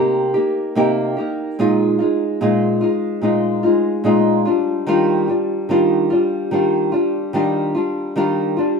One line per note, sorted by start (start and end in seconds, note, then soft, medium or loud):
0.00 0.34 C3 medium
0.00 0.35 A#3 medium
0.00 0.34 D#4 medium
0.00 0.33 G4 medium
0.34 0.75 A#3 medium
0.34 0.76 D#4 medium
0.34 0.76 G4 medium
0.76 1.17 C3 medium
0.76 1.17 A#3 medium
0.76 1.17 D#4 loud
0.76 1.15 G4 medium
1.17 1.59 A#3 medium
1.17 1.58 D#4 medium
1.17 1.58 G4 medium
1.59 2.00 A#2 medium
1.59 2.00 G#3 medium
1.59 1.99 D#4 medium
1.59 1.98 F4 loud
1.99 2.40 G#3 soft
1.99 2.41 D#4 soft
1.99 2.40 F4 medium
2.41 2.82 A#2 medium
2.41 2.82 G#3 medium
2.41 2.81 D#4 medium
2.41 2.80 F4 medium
2.81 3.22 G#3 soft
2.81 3.22 D#4 medium
2.81 3.22 F4 medium
3.22 3.63 A#2 medium
3.22 3.64 G#3 medium
3.22 3.63 D#4 medium
3.22 3.62 F4 medium
3.63 4.03 G#3 soft
3.63 4.04 D#4 medium
3.63 4.04 F4 medium
4.04 4.45 A#2 medium
4.04 4.46 G#3 medium
4.04 4.46 D#4 medium
4.04 4.44 F4 medium
4.45 4.86 G3 medium
4.45 4.87 D4 medium
4.45 4.87 F4 medium
4.86 5.28 D#3 medium
4.86 5.28 G3 medium
4.86 5.28 D4 medium
4.86 5.27 F4 loud
5.28 5.69 G3 soft
5.28 5.69 D4 soft
5.28 5.69 F4 medium
5.69 6.10 D#3 medium
5.69 6.11 G3 medium
5.69 6.11 D4 medium
5.69 6.09 F4 loud
6.10 6.51 G3 soft
6.10 6.52 D4 medium
6.10 6.51 F4 medium
6.51 6.92 D#3 medium
6.51 6.93 G3 medium
6.51 6.92 D4 medium
6.51 6.91 F4 medium
6.92 7.33 G3 soft
6.92 7.34 D4 medium
6.92 7.33 F4 medium
7.33 7.75 D#3 medium
7.33 7.75 G3 medium
7.33 7.75 D4 loud
7.33 7.74 F4 medium
7.75 8.15 G3 soft
7.75 8.16 D4 medium
7.75 8.16 F4 medium
8.16 8.57 D#3 medium
8.16 8.57 G3 medium
8.16 8.57 D4 medium
8.16 8.55 F4 medium
8.57 8.80 G3 soft
8.57 8.80 D4 medium
8.57 8.80 F4 medium